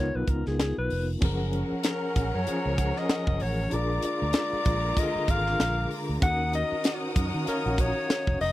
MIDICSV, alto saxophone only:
0, 0, Header, 1, 2, 480
1, 0, Start_track
1, 0, Key_signature, 6, "major"
1, 0, Tempo, 625000
1, 935, Time_signature, 4, 2, 24, 8
1, 6545, End_track
2, 0, Start_track
2, 0, Title_t, "Alto saxophone"
2, 0, Program_c, 0, 65
2, 0, Note_on_c, 0, 73, 92
2, 120, Note_on_c, 0, 71, 81
2, 132, Note_off_c, 0, 73, 0
2, 229, Note_on_c, 0, 70, 79
2, 240, Note_off_c, 0, 71, 0
2, 361, Note_off_c, 0, 70, 0
2, 365, Note_on_c, 0, 68, 73
2, 453, Note_off_c, 0, 68, 0
2, 463, Note_on_c, 0, 68, 83
2, 589, Note_off_c, 0, 68, 0
2, 603, Note_on_c, 0, 71, 80
2, 822, Note_off_c, 0, 71, 0
2, 1429, Note_on_c, 0, 70, 89
2, 1805, Note_on_c, 0, 73, 97
2, 1816, Note_off_c, 0, 70, 0
2, 2286, Note_on_c, 0, 75, 94
2, 2298, Note_off_c, 0, 73, 0
2, 2626, Note_on_c, 0, 73, 92
2, 2638, Note_off_c, 0, 75, 0
2, 2869, Note_on_c, 0, 74, 107
2, 2881, Note_off_c, 0, 73, 0
2, 3104, Note_off_c, 0, 74, 0
2, 3108, Note_on_c, 0, 74, 114
2, 3832, Note_on_c, 0, 75, 99
2, 3843, Note_off_c, 0, 74, 0
2, 4074, Note_on_c, 0, 77, 115
2, 4085, Note_off_c, 0, 75, 0
2, 4583, Note_off_c, 0, 77, 0
2, 4782, Note_on_c, 0, 78, 125
2, 5003, Note_off_c, 0, 78, 0
2, 5030, Note_on_c, 0, 75, 107
2, 5472, Note_off_c, 0, 75, 0
2, 5748, Note_on_c, 0, 70, 97
2, 5995, Note_on_c, 0, 73, 105
2, 6007, Note_off_c, 0, 70, 0
2, 6456, Note_off_c, 0, 73, 0
2, 6461, Note_on_c, 0, 75, 113
2, 6545, Note_off_c, 0, 75, 0
2, 6545, End_track
0, 0, End_of_file